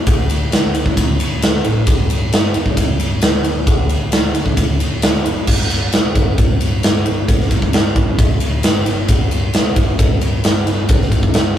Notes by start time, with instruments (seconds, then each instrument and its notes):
0.07 picked electric bass D2, kick, ride
0.30 picked electric bass D2, ride
0.52 picked electric bass D2, snare, ride
0.75 ride
0.86 kick
0.97 picked electric bass D2, kick, ride
1.20 ride
1.42 picked electric bass D2, snare, ride
1.64 picked electric bass A1, ride
1.87 picked electric bass G1, kick, ride
2.10 picked electric bass G1, ride
2.32 picked electric bass G1, snare, ride
2.54 picked electric bass E2, ride
2.66 kick
2.77 picked electric bass E1, kick, ride
2.98 picked electric bass G1, ride
3.21 picked electric bass D2, snare, ride
3.44 ride
3.67 picked electric bass D2, kick, ride
3.89 picked electric bass D2, ride
4.12 picked electric bass D2, snare, ride
4.35 ride
4.46 kick
4.57 picked electric bass D2, kick, ride
4.80 ride
5.02 picked electric bass D2, snare, ride
5.26 picked electric bass F#1, ride
5.47 picked electric bass G1, kick, crash
5.61 snare
5.70 picked electric bass G1, ride
5.92 picked electric bass E1, snare, ride
6.15 picked electric bass G1, kick, ride
6.38 picked electric bass G1, kick, ride
6.61 picked electric bass G1, ride
6.83 picked electric bass G1, snare, ride
7.06 picked electric bass G1, ride
7.28 picked electric bass G1, kick, ride
7.40 snare
7.51 picked electric bass G1, kick, ride
7.62 kick
7.73 picked electric bass G1, snare, ride
7.96 picked electric bass G1, kick, ride
8.19 picked electric bass G1, kick, ride
8.40 picked electric bass D2, ride
8.63 picked electric bass G1, snare, ride
8.86 picked electric bass G1, snare, ride
9.08 picked electric bass G1, kick, ride
9.31 picked electric bass G1, ride
9.54 picked electric bass E1, snare, ride
9.76 picked electric bass G1, kick, ride
9.99 picked electric bass G1, kick, ride
10.21 picked electric bass G1, ride
10.44 picked electric bass G1, snare, ride
10.67 picked electric bass G1, snare, ride
10.89 picked electric bass G1, kick, ride
11.01 snare
11.12 picked electric bass G1, kick, ride
11.23 kick
11.34 picked electric bass G1, snare, ride